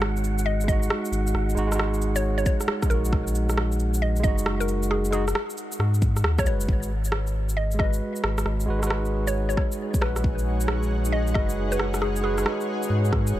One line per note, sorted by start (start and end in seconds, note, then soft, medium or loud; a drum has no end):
0.00 0.89 G#1 loud
0.00 0.63 G#3 medium
0.00 0.66 D#4 medium
0.00 0.68 F#4 medium
0.00 6.69 F#5 medium
0.00 cross-stick loud
0.17 shaker soft
0.24 cabasa medium
0.38 shaker soft
0.46 0.66 D#5 medium
0.61 1.53 G#3 medium
0.61 shaker soft
0.68 1.55 D#4 medium
0.68 0.92 D#5 medium
0.68 kick loud
0.68 cabasa medium
0.72 1.57 F#4 loud
0.83 shaker medium
0.90 cross-stick loud
1.05 shaker soft
1.12 1.33 G#1 loud
1.12 cabasa medium
1.27 shaker medium
1.34 1.55 G#1 loud
1.34 cross-stick soft
1.49 shaker soft
1.55 2.45 G#1 medium
1.55 1.66 G#3 medium
1.55 1.68 D#4 medium
1.55 1.69 F#4 loud
1.55 cabasa medium
1.68 2.85 G#3 medium
1.68 2.89 D#4 medium
1.72 2.91 F#4 loud
1.72 cross-stick medium
1.72 shaker medium
1.79 cross-stick loud
1.94 shaker soft
2.02 cabasa medium
2.16 2.35 C#5 medium
2.16 shaker medium
2.38 2.43 C#5 medium
2.38 shaker soft
2.46 2.55 C#5 medium
2.46 kick loud
2.46 cabasa medium
2.61 cross-stick soft
2.61 shaker medium
2.68 cross-stick loud
2.82 4.18 G#3 medium
2.82 kick loud
2.82 cross-stick medium
2.82 shaker soft
2.90 4.25 A#1 medium
2.90 4.22 D#4 medium
2.90 3.54 A#4 medium
2.90 cabasa medium
2.94 4.24 F#4 medium
3.05 shaker medium
3.13 kick loud
3.13 cross-stick medium
3.27 shaker soft
3.35 cabasa medium
3.50 cross-stick medium
3.50 shaker medium
3.58 cross-stick loud
3.72 shaker soft
3.80 cabasa medium
3.94 shaker medium
4.02 4.22 D#5 medium
4.16 5.09 G#3 medium
4.16 shaker soft
4.23 5.34 F#1 loud
4.23 5.11 D#4 medium
4.23 4.47 D#5 medium
4.23 kick loud
4.23 cabasa medium
4.28 5.13 F#4 loud
4.38 shaker medium
4.46 cross-stick loud
4.60 4.83 A#4 loud
4.60 shaker soft
4.68 cabasa medium
4.83 shaker medium
4.91 5.11 G#4 loud
4.91 cross-stick soft
5.05 shaker soft
5.10 5.22 G#3 medium
5.10 5.24 D#4 medium
5.10 5.36 G#4 medium
5.10 cabasa medium
5.14 5.24 F#4 loud
5.28 cross-stick medium
5.28 shaker medium
5.35 cross-stick loud
5.50 shaker soft
5.57 cabasa medium
5.72 shaker medium
5.79 6.23 G#2 medium
5.79 cross-stick medium
5.94 shaker soft
6.02 kick loud
6.02 cabasa medium
6.17 cross-stick soft
6.17 shaker medium
6.24 6.47 D#2 medium
6.24 cross-stick loud
6.38 6.44 C#5 medium
6.38 kick loud
6.38 cross-stick medium
6.38 shaker soft
6.44 6.67 F#1 loud
6.44 6.89 G#3 medium
6.44 6.90 F#4 medium
6.44 6.91 B4 medium
6.44 6.56 C#5 medium
6.44 cabasa medium
6.60 shaker medium
6.68 8.01 G#1 medium
6.68 kick loud
6.83 13.40 D#4 medium
6.83 shaker soft
7.05 shaker medium
7.10 13.40 G#4 medium
7.10 13.40 C#5 medium
7.10 cross-stick loud
7.27 shaker soft
7.44 13.40 F#5 medium
7.49 shaker medium
7.57 7.78 D#5 medium
7.71 8.64 G#3 medium
7.71 shaker soft
7.79 8.66 F#4 medium
7.79 8.68 B4 medium
7.79 8.03 D#5 medium
7.79 kick loud
7.79 cross-stick medium
7.93 shaker medium
8.16 shaker soft
8.24 8.45 G#1 loud
8.24 cross-stick loud
8.38 cross-stick medium
8.38 shaker medium
8.45 8.67 G#1 loud
8.45 cross-stick medium
8.60 shaker soft
8.66 9.56 G#1 medium
8.66 8.78 G#3 medium
8.66 8.79 F#4 medium
8.70 8.80 B4 medium
8.79 9.97 G#3 medium
8.79 10.00 F#4 medium
8.79 cross-stick medium
8.79 shaker medium
8.87 10.02 B4 loud
8.87 cross-stick loud
9.05 shaker soft
9.27 9.46 C#5 medium
9.27 shaker medium
9.49 9.54 C#5 medium
9.49 shaker soft
9.57 9.66 C#5 medium
9.57 kick loud
9.57 cross-stick medium
9.72 shaker medium
9.94 11.30 G#3 medium
9.94 kick loud
9.94 shaker soft
10.01 11.37 A#1 medium
10.01 11.33 F#4 medium
10.01 10.65 B4 medium
10.01 cross-stick loud
10.06 11.35 B4 medium
10.16 cross-stick medium
10.16 shaker medium
10.24 kick loud
10.38 shaker soft
10.61 shaker medium
10.68 cross-stick loud
10.83 shaker soft
11.05 shaker medium
11.12 11.33 D#5 medium
11.27 12.20 G#3 medium
11.27 shaker soft
11.34 12.45 F#1 medium
11.34 12.22 F#4 medium
11.34 11.58 D#5 medium
11.34 kick loud
11.34 cross-stick medium
11.39 12.24 B4 loud
11.49 shaker medium
11.72 11.95 B4 medium
11.72 shaker soft
11.79 cross-stick loud
11.94 cross-stick medium
11.94 shaker medium
12.02 12.22 G#4 medium
12.02 cross-stick medium
12.16 shaker soft
12.21 12.33 G#3 medium
12.21 12.35 F#4 medium
12.21 12.47 G#4 medium
12.21 12.35 B4 loud
12.34 13.40 G#3 medium
12.38 13.40 F#4 medium
12.38 13.40 B4 medium
12.38 cross-stick soft
12.38 shaker medium
12.46 cross-stick loud
12.61 shaker soft
12.83 shaker medium
12.90 13.33 G#2 loud
13.05 shaker soft
13.13 kick loud
13.13 cross-stick medium
13.27 shaker medium
13.34 13.40 D#1 medium